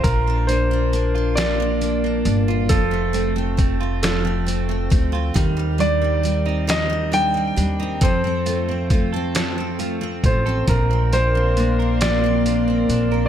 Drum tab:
HH |xxxxxx|xxxxxx|xxxxxx|xxxxxx|
SD |---o--|---o--|---o--|---o--|
BD |o-----|o-o--o|o-----|o-o--o|

HH |xxxxxx|
SD |---o--|
BD |o-----|